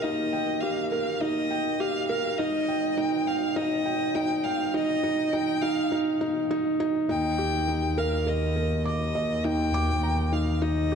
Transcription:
Already playing: double bass section D#2, felt piano D#4 G4 A#4 G5
0.03 felt piano D#4, violin D#5
0.33 felt piano G5
0.61 felt piano G4, violin F5
0.91 felt piano A#4, violin F5
1.21 felt piano D#4, violin D#5
1.51 felt piano G5
1.80 felt piano G4, violin F5
2.09 felt piano A#4, violin F5
2.38 double bass section G#1, felt piano D#4, violin D#5
2.68 felt piano G5
2.97 felt piano D#4, violin G5
3.27 violin F5, felt piano G5
3.56 felt piano D#4, violin D#5
3.86 felt piano G5
4.15 felt piano D#4, violin G5
4.44 violin F5, felt piano G5
4.74 felt piano D#4, violin D#5
5.03 felt piano D#4
5.33 felt piano D#4, violin G5
5.62 felt piano D#4, violin F5
5.92 felt piano D#4
6.21 felt piano D#4
6.51 felt piano D#4
6.80 felt piano D#4
7.09 double bass section D#2, felt piano D#4, violin G5
7.38 felt piano G4
7.68 felt piano D#4
7.98 felt piano A#4, violin F5
8.27 felt piano A#4, violin D#5
8.56 felt piano A#4
8.85 violin D#5, felt piano D6
9.15 felt piano D#5
9.45 felt piano D#4, violin G5
9.74 felt piano D6
10.03 felt piano A#5
10.32 felt piano D#4, violin F5
10.62 felt piano D#4, violin D#5
10.92 felt piano G4

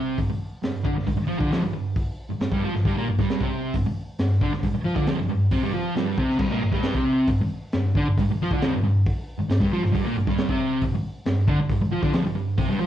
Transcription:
Already playing: distorted electric guitar C3 C4
0.18 distorted electric guitar G2, kick, open hi-hat
0.30 muted distorted electric guitar stroke
0.63 distorted electric guitar G2, snare, open hi-hat
0.84 distorted electric guitar D3 D4, kick
0.95 distorted electric guitar G2, snare
1.07 distorted electric guitar G2, kick, open hi-hat
1.18 muted distorted electric guitar stroke
1.28 distorted electric guitar F3 F4
1.39 distorted electric guitar D3 D4, kick
1.50 distorted electric guitar F2 F3, snare, open hi-hat
1.62 distorted electric guitar G2
1.73 distorted electric guitar G2
1.96 kick, open hi-hat
2.30 muted distorted electric guitar stroke
2.41 distorted electric guitar G2, snare, open hi-hat
2.52 distorted electric guitar G2 G3, kick
2.64 distorted electric guitar F3 F4
2.75 distorted electric guitar G2, snare
2.85 distorted electric guitar G2 G3, kick, open hi-hat
2.97 distorted electric guitar A#2 A#3
3.08 distorted electric guitar G2
3.19 distorted electric guitar G2 G3, kick, snare
3.30 snare, open hi-hat
3.40 distorted electric guitar C3 C4, kick
3.74 distorted electric guitar G2, kick, open hi-hat
3.86 muted distorted electric guitar stroke
4.19 distorted electric guitar G2, snare, open hi-hat
4.41 distorted electric guitar D3 D4, kick
4.53 distorted electric guitar G2, snare
4.63 distorted electric guitar G2, kick, open hi-hat
4.74 muted distorted electric guitar stroke
4.84 distorted electric guitar F3 F4
4.95 distorted electric guitar D3 D4, kick, snare
5.07 distorted electric guitar F2 F3, snare, open hi-hat
5.17 distorted electric guitar G2
5.29 distorted electric guitar G2
5.51 distorted electric guitar C3 C4, kick, open hi-hat
5.62 distorted electric guitar G2 G3
5.73 distorted electric guitar F3 F4
5.95 distorted electric guitar G2 G3, snare, open hi-hat
6.18 distorted electric guitar C3 C4, kick
6.30 snare
6.38 distorted electric guitar G2 G3, kick, crash
6.50 distorted electric guitar A#2 A#3
6.61 distorted electric guitar G2
6.72 distorted electric guitar G2 G3, kick, snare
6.83 snare, open hi-hat
6.95 distorted electric guitar C3 C4, kick
7.27 distorted electric guitar G2, kick, open hi-hat
7.41 muted distorted electric guitar stroke
7.72 distorted electric guitar G2, snare, open hi-hat
7.95 distorted electric guitar D3 D4, kick
8.07 distorted electric guitar G2
8.18 distorted electric guitar G2, kick, open hi-hat
8.30 muted distorted electric guitar stroke
8.42 distorted electric guitar F3 F4
8.51 distorted electric guitar D3 D4, kick
8.61 distorted electric guitar F2 F3, snare, open hi-hat
8.74 distorted electric guitar G2
8.84 distorted electric guitar G2
9.06 kick, open hi-hat
9.38 muted distorted electric guitar stroke
9.49 distorted electric guitar G2, snare, open hi-hat
9.60 distorted electric guitar G2 G3, kick
9.72 distorted electric guitar F3 F4
9.82 distorted electric guitar G2, snare
9.92 distorted electric guitar G2 G3, kick, open hi-hat
10.04 distorted electric guitar A#2 A#3
10.16 distorted electric guitar G2
10.27 distorted electric guitar G2 G3, kick, snare
10.38 snare, open hi-hat
10.49 distorted electric guitar C3 C4, kick
10.81 distorted electric guitar G2, kick, open hi-hat
10.94 muted distorted electric guitar stroke
11.26 distorted electric guitar G2, snare, open hi-hat
11.47 distorted electric guitar D3 D4, kick
11.59 distorted electric guitar G2
11.70 distorted electric guitar G2, kick, open hi-hat
11.81 muted distorted electric guitar stroke
11.92 distorted electric guitar F3 F4
12.03 distorted electric guitar D3 D4, kick, snare
12.12 distorted electric guitar F2 F3, snare, open hi-hat
12.24 distorted electric guitar G2
12.35 distorted electric guitar G2
12.58 distorted electric guitar C3 C4, kick, open hi-hat
12.69 distorted electric guitar G2 G3
12.79 distorted electric guitar F3 F4

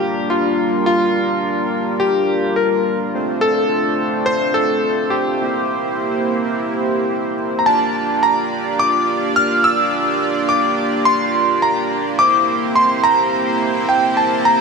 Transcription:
Already playing: supersaw synth G3 A#3 D4 F4 A#4, electric grand piano G4
0.30 electric grand piano F4
0.86 electric grand piano F4
2.00 electric grand piano G4
2.56 electric grand piano A#4
3.14 supersaw synth A3 C4 D4 C5
3.41 electric grand piano A4
4.26 electric grand piano C5
4.54 electric grand piano A4
5.10 electric grand piano G4
5.41 supersaw synth A#3 C4 E4 G4
7.59 electric grand piano A#5
7.66 supersaw synth A#3 D4 F4 G4 D5, electric grand piano A5
8.23 electric grand piano A#5
8.79 electric grand piano D6
9.36 electric grand piano F6
9.64 electric grand piano E6
10.49 electric grand piano D6
11.05 electric grand piano C6
11.62 electric grand piano A#5
12.19 supersaw synth C4 E4 C5, electric grand piano D6
12.76 electric grand piano C6
13.04 electric grand piano A#5
13.89 electric grand piano G5
14.17 electric grand piano A5
14.45 electric grand piano A#5

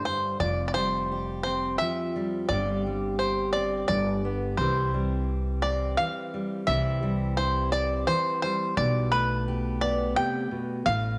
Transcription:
Already playing: steel-string acoustic guitar D3 D4 G4
0.05 steel-string acoustic guitar G2, five-string banjo C5
0.40 upright bass F1, steel-string acoustic guitar F2, five-string banjo D5
0.68 five-string banjo D5
0.74 steel-string acoustic guitar G3, five-string banjo C5
1.12 steel-string acoustic guitar G4
1.43 steel-string acoustic guitar C4, five-string banjo C5
1.78 steel-string acoustic guitar F3, five-string banjo E5
2.16 steel-string acoustic guitar G3
2.49 upright bass G1, steel-string acoustic guitar G2 D3 G3 C4, five-string banjo D5
2.53 steel-string acoustic guitar G4
2.86 steel-string acoustic guitar G3
3.19 steel-string acoustic guitar G4, five-string banjo C5
3.53 steel-string acoustic guitar C4, five-string banjo D5
3.88 upright bass G1, steel-string acoustic guitar G2, five-string banjo D5
4.25 steel-string acoustic guitar B3
4.57 upright bass C2, steel-string acoustic guitar C3 E3 G3 C4, five-string banjo C5
4.62 steel-string acoustic guitar E4
4.94 steel-string acoustic guitar G3
5.62 steel-string acoustic guitar C4, five-string banjo D5
5.97 steel-string acoustic guitar E3, five-string banjo F5
6.34 steel-string acoustic guitar G3
6.67 upright bass C2, steel-string acoustic guitar C3 E3 G3 C4 E4, five-string banjo E5
7.03 steel-string acoustic guitar G3
7.37 steel-string acoustic guitar E4, five-string banjo C5
7.72 steel-string acoustic guitar C4, five-string banjo D5
8.07 steel-string acoustic guitar E3, five-string banjo C5
8.42 steel-string acoustic guitar G3, five-string banjo C5
8.77 upright bass B1, steel-string acoustic guitar B2, five-string banjo D5
9.12 steel-string acoustic guitar A3, five-string banjo B4
9.48 steel-string acoustic guitar G4
9.81 steel-string acoustic guitar B3, five-string banjo D5
10.16 steel-string acoustic guitar C3, five-string banjo G5
10.51 steel-string acoustic guitar B2
10.86 upright bass A1, steel-string acoustic guitar A2, five-string banjo F5

